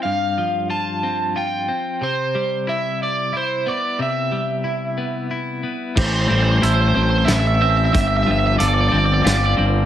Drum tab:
CC |------|------|------|x-----|
HH |------|------|------|--x-x-|
SD |------|------|------|----o-|
BD |------|------|------|o-----|

CC |------|
HH |x-x-x-|
SD |----o-|
BD |o-----|